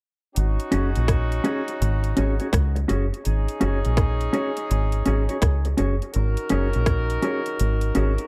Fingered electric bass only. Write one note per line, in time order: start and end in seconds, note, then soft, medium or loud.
0.37 0.57 G#1 medium
0.73 0.93 F#1 medium
0.97 1.39 A#1 medium
1.82 2.13 G#1 loud
2.18 2.38 G#1 medium
2.54 2.85 C#2 loud
2.90 3.10 F#1 medium
3.26 3.46 G#1 medium
3.62 3.82 F#1 medium
3.86 4.28 A#1 medium
4.71 5.02 G#1 loud
5.07 5.27 G#1 medium
5.43 5.74 C#2 medium
5.79 5.99 F#1 medium
6.16 6.35 G#1 medium
6.52 6.72 F#1 medium
6.76 7.17 A#1 medium
7.60 7.91 G#1 loud
7.97 8.16 G#1 medium